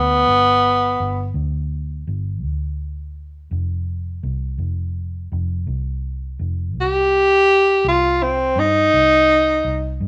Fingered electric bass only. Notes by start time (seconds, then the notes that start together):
Already playing: D2
0.27 G1
1.00 G1
1.34 D2
2.07 G1
2.43 D2
3.51 F1
4.23 C2
4.58 F1
5.32 F1
5.67 C2
6.39 F1
6.76 C2
7.84 C2
8.56 G2
8.94 C2
9.64 C2
10.00 G2